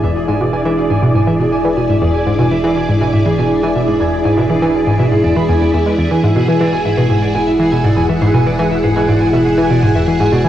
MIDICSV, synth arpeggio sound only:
0, 0, Header, 1, 2, 480
1, 0, Start_track
1, 0, Tempo, 495868
1, 33, Time_signature, 4, 2, 24, 8
1, 10152, End_track
2, 0, Start_track
2, 0, Title_t, "Synth arpeggio sound"
2, 0, Program_c, 0, 84
2, 34, Note_on_c, 0, 40, 79
2, 100, Note_off_c, 0, 40, 0
2, 273, Note_on_c, 0, 44, 104
2, 339, Note_off_c, 0, 44, 0
2, 394, Note_on_c, 0, 47, 95
2, 434, Note_off_c, 0, 47, 0
2, 513, Note_on_c, 0, 52, 83
2, 553, Note_off_c, 0, 52, 0
2, 633, Note_on_c, 0, 52, 103
2, 733, Note_off_c, 0, 52, 0
2, 873, Note_on_c, 0, 44, 75
2, 940, Note_off_c, 0, 44, 0
2, 992, Note_on_c, 0, 47, 84
2, 1059, Note_off_c, 0, 47, 0
2, 1112, Note_on_c, 0, 44, 75
2, 1152, Note_off_c, 0, 44, 0
2, 1232, Note_on_c, 0, 52, 78
2, 1332, Note_off_c, 0, 52, 0
2, 1353, Note_on_c, 0, 47, 78
2, 1393, Note_off_c, 0, 47, 0
2, 1594, Note_on_c, 0, 52, 98
2, 1693, Note_off_c, 0, 52, 0
2, 1714, Note_on_c, 0, 47, 78
2, 1780, Note_off_c, 0, 47, 0
2, 1836, Note_on_c, 0, 44, 75
2, 1874, Note_off_c, 0, 44, 0
2, 1954, Note_on_c, 0, 40, 84
2, 2020, Note_off_c, 0, 40, 0
2, 2194, Note_on_c, 0, 44, 103
2, 2260, Note_off_c, 0, 44, 0
2, 2313, Note_on_c, 0, 47, 99
2, 2353, Note_off_c, 0, 47, 0
2, 2435, Note_on_c, 0, 52, 81
2, 2474, Note_off_c, 0, 52, 0
2, 2555, Note_on_c, 0, 52, 106
2, 2654, Note_off_c, 0, 52, 0
2, 2796, Note_on_c, 0, 44, 75
2, 2861, Note_off_c, 0, 44, 0
2, 2916, Note_on_c, 0, 47, 81
2, 2981, Note_off_c, 0, 47, 0
2, 3037, Note_on_c, 0, 44, 77
2, 3075, Note_off_c, 0, 44, 0
2, 3155, Note_on_c, 0, 52, 79
2, 3254, Note_off_c, 0, 52, 0
2, 3277, Note_on_c, 0, 47, 76
2, 3315, Note_off_c, 0, 47, 0
2, 3517, Note_on_c, 0, 52, 97
2, 3615, Note_off_c, 0, 52, 0
2, 3638, Note_on_c, 0, 47, 79
2, 3702, Note_off_c, 0, 47, 0
2, 3758, Note_on_c, 0, 44, 77
2, 3795, Note_off_c, 0, 44, 0
2, 3878, Note_on_c, 0, 40, 83
2, 3942, Note_off_c, 0, 40, 0
2, 4117, Note_on_c, 0, 44, 102
2, 4182, Note_off_c, 0, 44, 0
2, 4237, Note_on_c, 0, 47, 100
2, 4275, Note_off_c, 0, 47, 0
2, 4356, Note_on_c, 0, 52, 81
2, 4395, Note_off_c, 0, 52, 0
2, 4475, Note_on_c, 0, 52, 105
2, 4574, Note_off_c, 0, 52, 0
2, 4715, Note_on_c, 0, 44, 76
2, 4781, Note_off_c, 0, 44, 0
2, 4834, Note_on_c, 0, 47, 82
2, 4900, Note_off_c, 0, 47, 0
2, 4954, Note_on_c, 0, 44, 75
2, 4994, Note_off_c, 0, 44, 0
2, 5073, Note_on_c, 0, 40, 77
2, 5140, Note_off_c, 0, 40, 0
2, 5194, Note_on_c, 0, 52, 75
2, 5260, Note_off_c, 0, 52, 0
2, 5315, Note_on_c, 0, 40, 102
2, 5354, Note_off_c, 0, 40, 0
2, 5435, Note_on_c, 0, 40, 73
2, 5501, Note_off_c, 0, 40, 0
2, 5556, Note_on_c, 0, 40, 81
2, 5654, Note_off_c, 0, 40, 0
2, 5676, Note_on_c, 0, 56, 73
2, 5741, Note_off_c, 0, 56, 0
2, 5794, Note_on_c, 0, 40, 82
2, 5860, Note_off_c, 0, 40, 0
2, 5914, Note_on_c, 0, 52, 79
2, 6014, Note_off_c, 0, 52, 0
2, 6033, Note_on_c, 0, 44, 100
2, 6099, Note_off_c, 0, 44, 0
2, 6153, Note_on_c, 0, 47, 101
2, 6193, Note_off_c, 0, 47, 0
2, 6274, Note_on_c, 0, 52, 79
2, 6314, Note_off_c, 0, 52, 0
2, 6394, Note_on_c, 0, 52, 103
2, 6493, Note_off_c, 0, 52, 0
2, 6634, Note_on_c, 0, 44, 78
2, 6700, Note_off_c, 0, 44, 0
2, 6753, Note_on_c, 0, 47, 83
2, 6820, Note_off_c, 0, 47, 0
2, 6873, Note_on_c, 0, 44, 79
2, 6913, Note_off_c, 0, 44, 0
2, 7114, Note_on_c, 0, 47, 74
2, 7153, Note_off_c, 0, 47, 0
2, 7353, Note_on_c, 0, 52, 96
2, 7453, Note_off_c, 0, 52, 0
2, 7474, Note_on_c, 0, 47, 79
2, 7540, Note_off_c, 0, 47, 0
2, 7593, Note_on_c, 0, 44, 77
2, 7633, Note_off_c, 0, 44, 0
2, 7713, Note_on_c, 0, 40, 81
2, 7780, Note_off_c, 0, 40, 0
2, 7834, Note_on_c, 0, 52, 78
2, 7933, Note_off_c, 0, 52, 0
2, 7955, Note_on_c, 0, 44, 101
2, 8021, Note_off_c, 0, 44, 0
2, 8074, Note_on_c, 0, 47, 99
2, 8113, Note_off_c, 0, 47, 0
2, 8196, Note_on_c, 0, 52, 80
2, 8234, Note_off_c, 0, 52, 0
2, 8316, Note_on_c, 0, 52, 107
2, 8414, Note_off_c, 0, 52, 0
2, 8556, Note_on_c, 0, 44, 75
2, 8621, Note_off_c, 0, 44, 0
2, 8676, Note_on_c, 0, 47, 84
2, 8741, Note_off_c, 0, 47, 0
2, 8796, Note_on_c, 0, 44, 78
2, 8835, Note_off_c, 0, 44, 0
2, 9033, Note_on_c, 0, 47, 77
2, 9073, Note_off_c, 0, 47, 0
2, 9273, Note_on_c, 0, 52, 99
2, 9373, Note_off_c, 0, 52, 0
2, 9394, Note_on_c, 0, 47, 77
2, 9460, Note_off_c, 0, 47, 0
2, 9516, Note_on_c, 0, 44, 79
2, 9554, Note_off_c, 0, 44, 0
2, 9635, Note_on_c, 0, 40, 80
2, 9701, Note_off_c, 0, 40, 0
2, 9756, Note_on_c, 0, 52, 75
2, 9854, Note_off_c, 0, 52, 0
2, 9875, Note_on_c, 0, 44, 102
2, 9941, Note_off_c, 0, 44, 0
2, 9994, Note_on_c, 0, 47, 101
2, 10034, Note_off_c, 0, 47, 0
2, 10112, Note_on_c, 0, 52, 83
2, 10152, Note_off_c, 0, 52, 0
2, 10152, End_track
0, 0, End_of_file